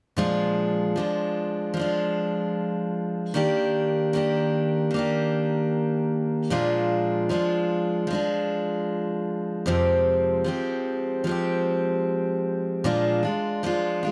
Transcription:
0.17 0.96 A#2 medium
0.17 0.95 F3 medium
0.17 0.96 G#3 medium
0.17 0.97 D4 medium
0.17 0.97 F4 medium
0.96 1.72 F3 medium
0.96 1.76 G#3 soft
0.96 1.79 D4 medium
0.96 1.77 F4 medium
1.74 3.33 F3 medium
1.74 3.34 G#3 medium
1.79 3.35 D4 medium
1.79 3.36 F4 medium
3.34 4.12 D#3 medium
3.34 4.14 A#3 medium
3.34 4.15 D4 medium
3.34 4.15 G4 medium
4.13 4.89 D#3 medium
4.13 4.94 A#3 medium
4.13 4.96 D4 medium
4.13 4.95 G4 medium
4.91 6.50 D#3 medium
4.91 6.51 A#3 medium
4.96 6.52 D4 medium
4.96 6.52 G4 medium
6.50 7.30 A#2 medium
6.50 7.29 F3 medium
6.50 7.30 G#3 medium
6.50 7.30 D4 medium
6.50 7.32 F4 medium
7.29 8.07 F3 medium
7.29 8.10 G#3 medium
7.29 8.10 D4 medium
7.29 8.14 F4 medium
8.07 9.67 F3 medium
8.07 9.67 G#3 medium
8.13 9.68 D4 medium
8.13 9.68 F4 medium
9.66 10.46 F2 medium
9.66 10.47 C3 medium
9.66 10.44 F3 medium
9.66 10.46 G#3 medium
9.66 10.46 C4 medium
9.66 10.47 G4 medium
10.44 11.23 F3 medium
10.44 11.26 G#3 medium
10.44 11.27 C4 medium
10.44 11.27 G4 medium
11.24 12.84 F3 medium
11.24 12.85 G#3 medium
11.29 12.85 C4 medium
11.29 12.86 G4 medium
12.84 13.24 A#2 medium
12.84 13.25 F3 medium
12.84 13.25 G#3 medium
12.84 13.23 D4 medium
12.84 13.22 F4 medium
13.23 13.63 G#3 soft
13.23 13.64 D4 soft
13.23 13.63 F4 soft
13.63 14.03 F3 medium
13.63 14.04 G#3 medium
13.63 14.03 D4 medium
13.63 14.02 F4 medium
14.03 14.12 G#3 soft
14.03 14.12 D4 soft
14.03 14.12 F4 soft

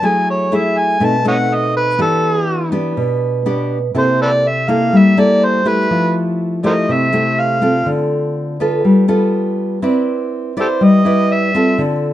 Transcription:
0.02 0.98 F#3 medium
0.02 0.48 A3 soft
0.02 0.48 E4 medium
0.02 0.48 G#4 medium
0.06 0.29 G#5 medium
0.30 0.57 C#5 medium
0.52 0.97 A3 medium
0.52 0.97 E4 medium
0.52 0.98 G#4 medium
0.52 0.80 E5 medium
0.79 1.06 G#5 medium
1.00 1.96 B2 medium
1.00 1.15 A3 soft
1.00 1.15 C4 medium
1.00 1.16 D#4 medium
1.05 1.27 A5 medium
1.25 1.95 A3 medium
1.25 1.95 C4 medium
1.25 1.95 D#4 medium
1.25 1.35 C#5 medium
1.25 1.37 D#5 medium
1.25 1.56 F#5 medium
1.55 1.76 D#5 medium
1.77 1.99 B4 medium
1.98 2.94 E3 medium
1.98 2.68 B3 medium
1.98 2.69 D4 medium
1.98 2.69 G4 medium
1.98 2.70 A4 medium
2.72 3.42 B3 medium
2.72 3.42 D4 medium
2.72 3.42 G4 medium
2.97 3.93 B2 medium
3.46 3.77 B3 medium
3.46 3.78 D4 medium
3.46 3.78 G4 medium
3.95 4.90 C3 medium
3.95 4.44 A#3 soft
3.95 4.44 E4 medium
3.95 4.44 A4 medium
3.95 4.19 C5 medium
4.22 4.31 A4 medium
4.22 4.29 B4 medium
4.22 4.49 D5 medium
4.48 4.71 E5 medium
4.68 5.13 A#3 medium
4.68 5.14 E4 medium
4.68 5.14 A4 medium
4.68 4.99 F5 medium
4.93 5.88 G3 medium
4.97 5.21 E5 medium
5.17 5.62 A#3 medium
5.17 5.63 E4 medium
5.17 5.63 A4 medium
5.17 5.46 D5 medium
5.45 5.69 C5 medium
5.65 6.60 A3 medium
5.65 6.60 E4 medium
5.65 6.60 G4 medium
5.65 6.16 B4 medium
5.91 6.86 F3 medium
6.63 7.09 A3 medium
6.63 7.09 E4 medium
6.63 7.09 G4 medium
6.63 6.74 A#4 medium
6.63 6.72 C5 medium
6.63 6.94 D#5 medium
6.89 7.84 C3 medium
6.89 7.41 E5 medium
7.13 7.58 A3 medium
7.13 7.58 E4 medium
7.13 7.58 G4 medium
7.40 7.88 F5 medium
7.62 8.56 C4 medium
7.62 8.56 F4 medium
7.62 8.56 A4 medium
7.86 8.82 D3 medium
8.60 9.05 B3 medium
8.60 9.05 F4 medium
8.60 9.05 A4 medium
8.84 9.80 G3 medium
9.08 9.78 B3 medium
9.08 9.78 F4 medium
9.08 9.78 A4 medium
9.82 10.78 C4 medium
9.82 10.52 E4 medium
9.82 10.52 B4 medium
9.82 10.52 D5 medium
10.57 11.01 E4 medium
10.57 10.68 G4 soft
10.57 10.66 A4 soft
10.57 11.01 B4 medium
10.57 10.85 C5 soft
10.57 11.02 D5 medium
10.81 11.76 G3 medium
10.81 11.35 D#5 medium
11.05 11.50 E4 medium
11.05 11.50 B4 medium
11.05 11.50 D5 medium
11.33 11.80 E5 medium
11.55 12.13 C4 medium
11.55 12.13 F4 medium
11.55 12.13 A4 medium
11.78 12.13 D3 medium

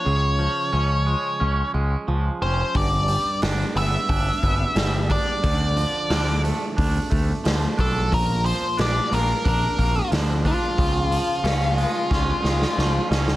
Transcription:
0.00 1.71 C#5 medium
0.05 0.47 C#2 medium
0.05 1.74 C#3 medium
0.39 2.07 F3 medium
0.73 1.14 C#2 medium
0.73 1.39 C#4 medium
1.06 1.73 G#3 medium
1.40 1.61 C#2 medium
1.40 2.41 C#4 medium
1.74 1.94 C#2 medium
1.74 2.75 G#3 medium
2.08 2.28 C#2 medium
2.08 2.75 F3 medium
2.42 2.62 F1 medium
2.42 2.75 C#4 medium
2.42 2.76 C5 medium
2.75 3.15 G1 loud
2.75 4.43 G2 medium
2.75 3.39 D5 medium
2.75 kick loud
2.75 open hi-hat medium
3.08 4.74 G3 medium
3.08 open hi-hat medium
3.42 3.63 G1 medium
3.42 4.09 D4 medium
3.42 snare loud
3.42 open hi-hat medium
3.76 3.96 G1 medium
3.76 4.41 B3 medium
3.76 5.11 E5 loud
3.76 open hi-hat medium
4.09 4.29 G1 medium
4.09 5.09 D4 medium
4.09 kick loud
4.09 open hi-hat medium
4.43 4.63 G1 medium
4.43 5.44 B3 medium
4.43 kick medium
4.43 open hi-hat soft
4.75 5.16 G1 medium
4.75 5.43 G3 medium
4.75 snare loud
4.75 open hi-hat medium
5.09 6.10 D4 medium
5.09 6.41 D5 medium
5.09 kick medium
5.09 open hi-hat soft
5.43 5.84 D2 medium
5.43 7.11 D3 medium
5.43 kick loud
5.43 open hi-hat medium
5.77 7.44 F3 medium
5.77 open hi-hat medium
6.10 6.50 D2 medium
6.10 6.75 D4 medium
6.10 snare loud
6.10 open hi-hat medium
6.44 7.09 A3 medium
6.44 open hi-hat medium
6.77 6.98 D2 medium
6.77 7.76 D4 medium
6.77 kick loud
6.77 open hi-hat medium
7.10 7.32 D2 medium
7.10 8.11 A3 medium
7.10 kick medium
7.10 open hi-hat medium
7.44 7.65 D2 medium
7.44 8.44 F3 medium
7.44 snare loud
7.44 open hi-hat medium
7.78 8.12 B1 medium
7.78 8.11 D4 medium
7.78 8.10 A4 medium
7.78 kick medium
7.78 open hi-hat medium
8.12 8.52 A#1 loud
8.12 9.78 A#2 medium
8.12 8.45 A#4 medium
8.12 kick loud
8.12 open hi-hat medium
8.45 10.11 F3 medium
8.45 8.76 C5 medium
8.45 open hi-hat medium
8.77 8.99 A#1 medium
8.77 9.43 D4 medium
8.77 9.14 D5 loud
8.77 snare loud
8.77 open hi-hat medium
9.11 9.32 A#1 medium
9.11 9.77 A#3 medium
9.11 9.47 A#4 medium
9.11 open hi-hat medium
9.45 9.65 A#1 medium
9.45 10.44 D4 medium
9.45 10.09 A#4 medium
9.45 kick loud
9.45 open hi-hat medium
9.78 9.99 A#1 medium
9.78 10.78 A#3 medium
9.78 kick medium
9.78 open hi-hat medium
10.11 10.51 D2 medium
10.11 11.10 F3 medium
10.11 snare loud
10.11 open hi-hat medium
10.45 10.78 D4 medium
10.45 13.07 F4 loud
10.45 kick medium
10.45 open hi-hat medium
10.78 11.18 C#2 loud
10.78 12.44 C#3 medium
10.78 kick loud
10.78 open hi-hat medium
11.11 12.74 F3 medium
11.11 open hi-hat medium
11.44 11.84 C#2 medium
11.44 12.09 C#4 medium
11.44 snare loud
11.44 open hi-hat medium
11.77 12.42 G#3 medium
11.77 open hi-hat medium
12.10 12.31 C#2 medium
12.10 13.08 C#4 medium
12.10 kick loud
12.10 snare medium
12.43 12.64 C#2 medium
12.43 13.36 G#3 medium
12.43 snare medium
12.62 snare medium
12.76 12.98 C#2 medium
12.76 13.36 F3 medium
12.76 snare medium
13.09 13.36 C#2 medium
13.09 13.36 C#4 medium
13.09 snare medium
13.28 snare medium

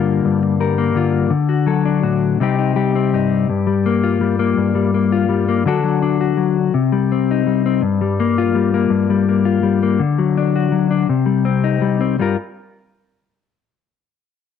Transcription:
0.00 0.24 G2 medium
0.00 0.94 D3 medium
0.00 0.59 G3 medium
0.00 0.77 A#3 medium
0.00 0.42 F4 medium
0.00 0.60 A#4 medium
0.25 1.32 G2 medium
0.43 muted clean electric guitar stroke medium
0.60 1.30 G3 medium
0.60 1.30 A#4 medium
0.78 1.32 A#3 medium
0.95 1.29 D3 medium
0.95 1.30 F4 medium
1.30 2.37 D3 medium
1.49 2.02 F#4 medium
1.66 2.37 F#3 medium
1.66 2.38 A4 medium
1.85 2.38 D4 medium
2.03 2.37 A2 medium
2.03 2.38 F#4 medium
2.40 3.48 C3 medium
2.40 2.75 G3 medium
2.40 2.94 C4 medium
2.40 2.57 D#4 medium
2.40 2.75 G4 medium
2.59 3.12 D#4 medium
2.76 3.46 G3 medium
2.76 5.65 G4 medium
2.95 3.47 C4 medium
3.13 3.48 G2 medium
3.13 3.47 D#4 medium
3.49 4.56 G2 medium
3.67 4.20 G3 medium
3.86 4.38 A#3 medium
4.04 5.11 F4 medium
4.21 4.74 G3 medium
4.39 4.93 A#3 medium
4.57 5.66 G2 medium
4.75 5.28 G3 medium
4.94 5.47 A#3 medium
5.12 5.64 F4 medium
5.29 5.63 G3 medium
5.48 5.66 A#3 medium
5.66 6.72 D3 medium
5.66 5.82 F#3 medium
5.66 6.01 D4 medium
5.66 6.19 F#4 medium
5.66 6.73 A4 medium
5.84 6.36 F#3 medium
6.02 6.56 D4 medium
6.21 6.72 F#4 medium
6.37 6.71 F#3 medium
6.74 7.83 C3 medium
6.92 7.45 G3 medium
7.12 7.65 C4 medium
7.31 7.82 D#4 medium
7.47 7.81 G3 medium
7.66 7.81 C4 medium
7.82 8.89 G2 medium
8.01 8.54 G3 medium
8.20 8.73 A#3 medium
8.38 9.44 F4 medium
8.55 9.09 G3 medium
8.74 9.28 A#3 medium
8.90 10.00 G2 medium
9.10 9.62 G3 medium
9.29 9.82 A#3 medium
9.45 9.98 F4 medium
9.63 9.98 G3 medium
9.83 10.01 A#3 medium
10.00 11.07 D3 medium
10.19 10.71 F#3 medium
10.38 10.89 D4 medium
10.56 11.07 F#4 medium
10.72 11.07 F#3 medium
10.91 11.07 D4 medium
11.09 12.18 C3 medium
11.26 11.80 G3 medium
11.45 12.00 C4 medium
11.64 12.16 D#4 medium
11.82 12.16 G3 medium
12.01 12.16 C4 medium
12.19 12.35 G2 medium
12.19 12.35 G3 medium
12.19 12.36 F4 medium
12.19 12.36 A#4 medium
12.19 muted clean electric guitar stroke medium

